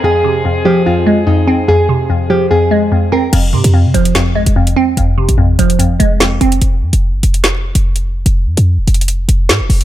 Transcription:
<<
  \new Staff \with { instrumentName = "Nylon-string guitar" } { \time 4/4 \key f \minor \tempo 4 = 146 aes'4 r8 g'8 f'4 ees'4 | aes'4 r8 g'8 aes'4. bes'8 | r1 | r1 |
r1 | r1 | }
  \new Staff \with { instrumentName = "French horn section" } { \time 4/4 \key f \minor <f aes c' aes'>1~ | <f aes c' aes'>1 | r1 | r1 |
r1 | r1 | }
  \new Staff \with { instrumentName = "Synth pluck" } { \clef bass \time 4/4 \key f \minor <f, aes c'>8 c8 f,8 f8 f,8 aes8 f,8 c'8 | f,8 c8 f,8 f8 f,8 aes8 f,8 c'8 | f,8 c8 f,8 f8 f,8 aes8 f,8 c'8 | f,8 c8 f,8 f8 f,8 aes8 f,8 c'8 |
r1 | r1 | }
  \new Staff \with { instrumentName = "808-style bass" } { \clef bass \time 4/4 \key f \minor r1 | r1 | f,,8 aes,16 f,8 c16 f,,4 aes,,16 f,,8. r8 | f,,8. aes,,8. f,,8 g,,16 f,,16 f,,4 f,,8 |
f,,8 f,16 f,,8 g,,16 f,,4~ f,,16 f,,4~ f,,16 | f,,8 f,16 f,8 ees,,16 f,,4 f,,8 aes,16 f,,16 f,,8 | }
  \new DrumStaff \with { instrumentName = "Drums" } \drummode { \time 4/4 r4 r4 r4 r4 | r4 r4 r4 r4 | <cymc hh>8. hh16 r8 hh16 hh16 <hh sn>8. hh16 r16 hh8. | hh8. hh16 r8 hh16 hh16 hh8 hh8 sn8 hh16 hh16 |
hh8. hh16 r8 hh16 hh16 <hh sn>8. hh16 r16 hh8. | hh8. hh16 \tuplet 3/2 { r16 r16 r16 hh16 hh16 hh16 } hh8 hh8 sn8 hho16 hh16 | }
>>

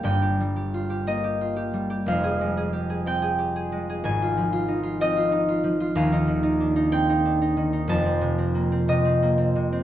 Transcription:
\new Staff \with { instrumentName = "Harp" } { \time 6/8 \key f \dorian \tempo 4. = 62 << { <ees'' f'' g''>4. ees''4. | f''4. g''4. | aes''4. ees''4. | \key c \dorian f''4. g''4. |
a''4. ees''4. | } \\ { <g,, g, g bes g'>16 g'16 g16 g'16 f'16 g'16 bes16 g'16 f'16 g'16 g16 g'16 | <f,, f,>16 aes'16 aes16 aes'16 g'16 aes'16 c'16 aes'16 g'16 aes'16 aes16 aes'16 | <aes,, aes,>16 f'16 f16 f'16 ees'16 f'16 c'16 f'16 ees'16 f'16 f16 f'16 | <ees,, ees,>16 ees'16 ees16 ees'16 d'16 ees'16 c'16 ees'16 d'16 ees'16 ees16 ees'16 |
<f,, f,>16 c'16 c16 c'16 bes16 c'16 c16 c'16 bes16 c'16 c16 c'16 | } >> }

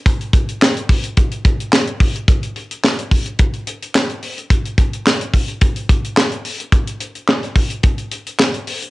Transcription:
\new DrumStaff \with { instrumentName = "Drums" } \drummode { \time 4/4 \tempo 4 = 108 <hh bd>16 hh16 <hh bd>16 hh16 <hc sn>16 hh16 <hho bd>16 hh16 <hh bd>16 hh16 <hh bd>16 hh16 <hc sn>16 hh16 <hho bd>16 hh16 | <hh bd>16 hh16 hh16 hh16 <hc sn>16 hh16 <hho bd>16 hh16 <hh bd>16 hh16 hh16 hh16 <hc sn>16 hh16 hho16 hh16 | <hh bd>16 hh16 <hh bd>16 hh16 <hc sn>16 hh16 <hho bd>16 hh16 <hh bd>16 hh16 <hh bd>16 hh16 <hc sn>16 hh16 hho16 hh16 | <hh bd>16 hh16 hh16 hh16 <hc sn>16 hh16 <hho bd>16 hh16 <hh bd>16 hh16 hh16 hh16 <hc sn>16 hh16 hho16 hh16 | }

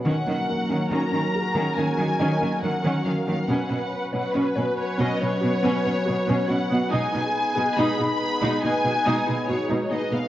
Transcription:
<<
  \new Staff \with { instrumentName = "Violin section" } { \time 4/4 \key ees \minor \tempo 4 = 70 ges''4 bes''4 aes''4 ges''8 f''16 f''16 | fis''4 b'8 cis''16 ees''16 cis''4. fis''8 | aes''4 ces'''4 aes''4 des''8 ees''16 f''16 | }
  \new Staff \with { instrumentName = "Felt piano" } { \time 4/4 \key ees \minor r8 <bes bes'>4 aes'4 ees''4.~ | ees''4. r2 r8 | r2. ges'4 | }
  \new Staff \with { instrumentName = "Analog synth pad" } { \time 4/4 \key ees \minor <ges des' ges' bes'>1 | <fis cis' fis' b'>1 | <ces' ees' ces''>1 | }
  \new Staff \with { instrumentName = "Viola section" } { \time 4/4 \key ees \minor << { bes'1 | b'1 | aes'1 | } \\ { des'16 des'16 r16 des'16 des'16 des'16 r16 des'16 des'16 bes16 des'16 des'16 bes16 des'16 des'16 bes16 | cis'16 cis'16 r16 cis'16 cis'16 cis'16 r16 cis'16 cis'16 b16 cis'16 cis'16 b16 cis'16 cis'16 b16 | ees'16 ees'16 r16 ees'16 ees'16 ees'16 r16 ees'16 ees'16 ces'16 ees'16 ees'16 ces'16 ees'16 ees'16 ces'16 | } >> }
  \new Staff \with { instrumentName = "Synth pluck" } { \time 4/4 \key ees \minor ees16 bes16 r16 des'16 ees16 des'16 r16 ees16 bes16 ges16 ees16 bes16 ges16 ees16 ges16 des'16 | b16 b'16 r16 cis''16 b16 cis''16 r16 b16 b'16 fis'16 b16 b'16 fis'16 b16 fis'16 cis''16 | aes16 ees'16 r16 aes'16 aes16 aes'16 r16 aes16 ees'16 ces'16 aes16 ees'16 ces'16 aes16 ces'16 aes'16 | }
  \new Staff \with { instrumentName = "Cello section" } { \clef bass \time 4/4 \key ees \minor ees16 ees16 r16 ees16 ees16 ees16 r16 ees16 ees16 ees16 ees16 ees16 ees16 ees16 ees16 ees16 | b,16 b,16 r16 b,16 b,16 b,16 r16 b,16 b,16 b,16 b,16 b,16 b,16 b,16 b,16 b,16 | ces16 ces16 r16 ces16 ces16 ces16 r16 ces16 ces16 ces16 ces16 ces16 ces16 ces16 ces16 ces16 | }
>>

